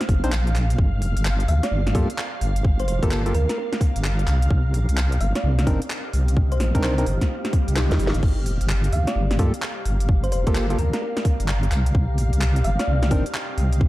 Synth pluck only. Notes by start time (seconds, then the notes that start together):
1.49 F5
1.63 D5
2.80 C5
2.88 C5
3.03 A#4
3.35 A#4
3.50 A#4
3.58 A#4
5.21 F5
5.36 D5
6.52 C5
6.60 C5
6.83 C5
8.93 F5
9.08 D5
10.24 C5
10.32 C5
10.47 A#4
10.79 A#4
10.93 A#4
11.02 A#4
12.65 F5
12.79 D5